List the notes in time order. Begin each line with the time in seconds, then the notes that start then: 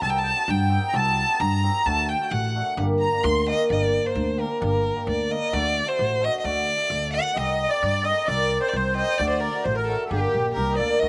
0.01 C2 C4 D#4 G4 A5
0.10 G5
0.15 A5
0.22 G5
0.29 A5
0.36 C4 D#4 F#4
0.48 G2 G5
0.69 C4 D#4 G4 G5
0.88 A#5
0.93 C2 C4 D#4 F#4 A5
1.28 C4 D#4 G4
1.40 G2 A#5
1.63 C4 D#4 G4
1.85 D2 A3 D4 F#4 A5
2.09 G5
2.21 A3 D4 F#4
2.31 A1 F#5
2.55 A3 D4 F#4
2.77 G1 A#3 D4 G4
2.99 A#5
3.12 A#3 D4 G4
3.24 D2 C6
3.47 A#3 D4 G4 D#5
3.70 G1 A#3 D4 G4 D5
4.03 A#3 D4 A#4 C5
4.15 D2
4.38 A#3 D4 G4 A#4
4.60 G1 A#3 D4 G4
4.64 A#4
4.96 A#3 D4 G4
5.07 D2 D5
5.30 A#3 D4 A#4 D#5
5.52 D2 A3 D4 F#4 D5
5.86 A3 D4 F#4 C5
5.99 A1
6.21 A3 D4 F#4 D#5
6.39 D#5
6.43 D2 A3 D4 F#4 D5
6.77 A3 D4 A4
6.90 D2
7.13 A3 D4 F#4 F#5
7.34 C2 C4 D#4 G4 D#5
7.68 C4 D#4 G4 D5
7.83 G2
8.03 C4 D#4 A4 D#5
8.26 C2 C4 D#4 A#4 D5
8.60 C4 D#4 G4 C5
8.69 D5
8.73 C2 C5
8.95 C4 D#4 G4 D#5
9.18 D2 A3 D4 F#4 D5
9.30 C5
9.40 A#4
9.54 A3 D4 F#4
9.64 A1 C5
9.75 A#4
9.87 A3 D4 F#4 A4
10.04 A4
10.10 G1 A#3 D4 G4
10.34 A#1
10.44 A#3 D4 G4
10.55 C2 A#4
10.71 D#5
10.77 D2 A#3 D4 A4 D5
10.99 D2 A3 D4 F#4 D#5